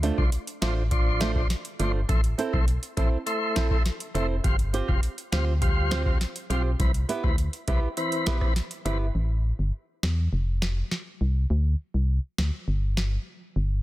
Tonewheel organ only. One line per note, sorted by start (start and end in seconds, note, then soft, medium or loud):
0.18 0.30 F3 medium
0.18 0.30 D4 medium
0.18 0.30 C5 medium
0.62 0.74 F3 medium
0.62 0.74 D4 medium
0.62 0.74 C5 medium
0.91 1.32 F3 medium
0.91 1.32 D4 medium
0.91 1.32 C5 loud
1.35 1.48 F3 medium
1.35 1.48 D4 medium
1.35 1.48 C5 medium
1.79 1.92 F3 medium
1.79 1.92 D4 medium
1.79 1.92 C5 medium
2.09 2.21 A3 medium
2.09 2.21 E4 medium
2.09 2.21 C5 loud
2.53 2.65 A3 medium
2.53 2.65 E4 medium
2.53 2.66 C5 medium
2.97 3.09 A3 medium
2.97 3.09 E4 medium
2.97 3.10 C5 medium
3.26 3.67 A3 loud
3.26 3.67 E4 medium
3.26 3.67 C5 loud
3.70 3.83 A3 medium
3.70 3.83 E4 medium
3.70 3.83 C5 medium
4.14 4.27 A3 medium
4.14 4.27 E4 medium
4.14 4.27 C5 medium
4.44 4.56 G3 medium
4.44 4.56 F4 medium
4.44 4.57 C5 loud
4.88 5.00 G3 medium
4.88 5.01 F4 medium
4.88 5.01 C5 medium
5.32 5.45 G3 medium
5.32 5.45 F4 medium
5.32 5.45 C5 medium
5.62 6.02 G3 loud
5.62 6.02 F4 medium
5.62 6.03 C5 loud
6.06 6.18 G3 medium
6.06 6.18 F4 medium
6.06 6.18 C5 medium
6.50 6.62 G3 medium
6.50 6.62 F4 medium
6.50 6.63 C5 medium
6.79 6.92 E3 medium
6.79 6.92 C4 medium
6.79 6.92 B4 loud
7.23 7.36 E3 medium
7.23 7.36 C4 medium
7.23 7.36 B4 medium
7.68 7.80 E3 medium
7.68 7.80 C4 medium
7.68 7.80 B4 medium
7.97 8.38 E3 medium
7.97 8.38 C4 medium
7.97 8.38 B4 loud
8.41 8.53 E3 medium
8.41 8.54 C4 medium
8.41 8.54 B4 medium
8.85 8.98 E3 medium
8.85 8.98 C4 medium
8.85 8.98 B4 medium